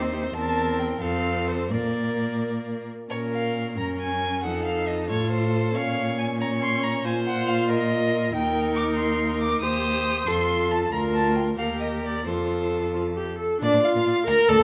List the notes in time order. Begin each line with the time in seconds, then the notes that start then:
Already playing: D#2 C5
0.02 C4 D#4
0.13 D#4 G4
0.23 C4 D#4
0.33 E2 C4 A#4 A5
0.79 G5
1.00 F2 C4 A4 F5
1.47 C5
1.71 A#2 A#3 A#4 D5
3.10 A#2 C#4 A#4 C#5
3.32 F5
3.77 F#2 C#4 A#4 A#5
4.00 G#5
4.43 F2 D#4 A4 F#5
4.65 F5
4.87 D#5
5.09 A2 F4 A4 C#5
5.31 C5
5.75 A#2 C#4 C#5 F5
6.18 G#5
6.40 C#4 C#5 A#5
6.62 C6
6.83 A#5
7.05 A#2 F4 C5 G#5
7.27 F#5
7.47 F5
7.69 A#4 D#5
8.34 D#2 D#4 A#4 G5
8.76 D6
8.96 C6
9.40 D6
9.61 D#2 G4 C5 D#6
10.26 F2 F4 A4 C6
10.71 A5
10.92 D2 F4 A#4 A#5
11.14 A5
11.36 G5
11.57 D#2 G4 A#4 F5
11.81 D#5
12.04 D5
12.26 F2 F4 A4 C5
12.94 F4
13.16 G4
13.39 A4
13.61 A#2 D4 D5
13.73 A#2 C5
13.83 F4 F5
13.95 A#2 A#4
14.06 A#2 D5
14.27 D2 A#4 D5 A#5
14.49 D2 A4 D5 A5